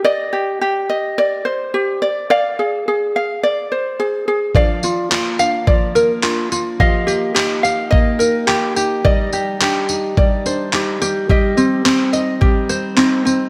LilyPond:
<<
  \new Staff \with { instrumentName = "Ukulele" } { \time 4/4 \key c \minor \tempo 4 = 107 <d'' ees''>8 g'8 g'8 ees''8 d''8 c''8 g'8 d''8 | <d'' f''>8 aes'8 aes'8 f''8 d''8 c''8 aes'8 aes'8 | <d'' f''>8 f'8 f'8 f''8 d''8 bes'8 f'8 f'8 | <ees'' f''>8 g'8 g'8 f''8 ees''8 bes'8 g'8 g'8 |
<d'' ees''>8 g'8 g'4 d''8 c''8 g'8 g'8 | <g' ees''>8 c'8 c'8 ees''8 g'8 c''8 c'8 c'8 | }
  \new Staff \with { instrumentName = "Steel-string acoustic guitar" } { \time 4/4 \key c \minor r1 | r1 | <f d'>8 f8 bes8 d'8 f8 bes8 d'8 bes8 | <f g'>8 bes8 ees'8 g'8 bes8 ees'8 g'8 ees'8 |
<g ees'>8 g8 d'8 ees'8 g8 d'8 ees'8 g8 | <g ees'>8 g8 c'8 ees'8 g8 c'8 ees'8 c'8 | }
  \new DrumStaff \with { instrumentName = "Drums" } \drummode { \time 4/4 r4 r4 r4 r4 | r4 r4 r4 r4 | bd8 tamb8 hc8 tamb8 bd8 tamb8 hc8 tamb8 | bd8 tamb8 hc8 tamb8 bd8 tamb8 hc8 tamb8 |
bd8 tamb8 hc8 tamb8 bd8 tamb8 hc8 tamb8 | bd8 tamb8 hc8 tamb8 bd8 tamb8 hc8 tamb8 | }
>>